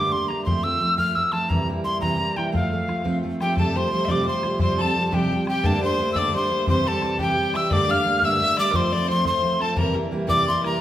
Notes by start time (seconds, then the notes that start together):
Already playing: G2 D3 G3 A3 A#3 D4 D6
0.12 G3 A3 A#3 D4 C6, bodhran
0.28 G3 A3 A#3 D4 A#5, bodhran
0.45 F3 A3 C4 F4 C6, bodhran
0.64 F3 A3 C4 F4 E6, bodhran
0.80 F3 A3 C4 F4
0.97 F3 A3 C4 F4 F6, bodhran
1.15 F3 A3 C4 F4 E6, bodhran
1.32 F3 A3 C4 F4 A5, bodhran
1.49 C3 E3 G3 A#3 E4 A#5, bodhran
1.68 E3 G3 A#3 E4, bodhran
1.84 E3 G3 A#3 E4 C6
2.00 C3 E3 G3 A#3 E4 A#5, bodhran
2.19 E3 G3 A#3 E4, bodhran
2.36 E3 G3 A#3 E4 G5, bodhran
2.52 F3 A3 C4 F4 F5, bodhran
2.71 F3 A3 C4 F4, bodhran
2.87 F3 A3 C4 F4, bodhran
3.04 F3 A3 C4 F4, bodhran
3.23 F3 A3 C4 F4, bodhran
3.40 F3 A3 C4 F4 G4 G5, bodhran
3.57 F2 C3 F3 G3 A3 F4 A4 A5, bodhran
3.74 F3 G3 A3 F4 C5 C6, bodhran
3.91 F3 G3 A3 F4 C5
4.05 F2 C3 D5 E5, bodhran
4.09 F3 G3 A3 F4 D6
4.26 F3 G3 A3 F4 C5 C6, bodhran
4.43 F3 G3 A3 F4, bodhran
4.59 C3 F3 G3 C4 F4 C5 C6, bodhran
4.77 F3 G3 C4 F4 A4, bodhran
4.81 A5
4.95 F3 G3 C4 F4
5.06 A5
5.11 C3 F3 G3 C4 F4 G4 G5, bodhran
5.30 F3 G3 C4 F4, bodhran
5.47 F3 G3 C4 F4 G4 G5, bodhran
5.64 G2 D3 G3 A3 A#3 D4 A4 A5, bodhran
5.81 G3 A3 A#3 D4 C5 C6, bodhran
5.99 G3 A3 A#3 D4
6.13 G2 D3 G3 A#3 D5 E6, bodhran
6.17 A3 D4 D6
6.33 G3 A3 A#3 D4 C5 C6, bodhran
6.50 G3 A3 A#3 D4
6.67 C3 E3 G3 C4 G4 C5 C6, bodhran
6.85 E3 G3 C4 G4 A4 A5, bodhran
7.02 E3 G3 C4 G4, bodhran
7.19 C3 E3 G3 C4 G4 G5, bodhran
7.37 E3 G3 C4 G4, bodhran
7.53 E3 G3 C4 G4 E5 E6, bodhran
7.71 G2 D3 G3 A3 A#3 D4 D5 D6, bodhran
7.88 G3 A3 A#3 D4 F5 F6, bodhran
8.05 G3 A3 A#3 D4
8.16 F6
8.22 G2 D3 G3 A3 A#3 D4 E5 E6, bodhran
8.40 G3 A3 A#3 D4 E5, bodhran
8.57 G3 A3 A#3 D4 D5 D6, bodhran
8.71 F3 A3 C4 F4 A#4, bodhran
8.75 C5 C6
8.92 F3 A3 C4 F4 D5, bodhran
9.08 F3 A3 C4 F4 C5 C6
9.25 F3 A3 C4 F4 C5 C6, bodhran
9.42 F3 A3 C4 F4, bodhran
9.59 F3 A3 C4 F4 A4 A5, bodhran
9.76 C3 E3 G3 A#3 E4 A#4 A#5, bodhran
9.94 E3 G3 A#3 E4, bodhran
10.11 E3 G3 A#3 E4
10.27 C3 E3 G3 A#3 E4 D5 D6, bodhran
10.46 E3 G3 A#3 E4 C6, bodhran
10.63 E3 G3 A#3 E4 A#4 A#5, bodhran